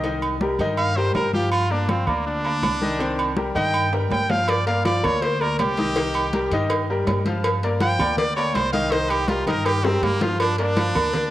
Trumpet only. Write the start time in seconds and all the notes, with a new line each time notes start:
0.78 F5
0.97 C5
1.15 A#4
1.34 G4
1.52 F4
1.71 D4
1.90 C4
2.08 A#3
2.27 D4
3.56 G5
4.12 G5
4.31 F5
4.49 D5
4.67 F5
4.86 D5
5.05 C#5
5.22 C5
5.41 A#4
5.59 G4
7.82 G5
8.18 D5
8.36 C#5
8.55 C5
8.73 F5
8.91 C5
9.10 G4
9.28 F4
9.47 A#4
9.66 G4
9.84 C4
10.03 A#3
10.22 F4
10.41 D4
10.59 D4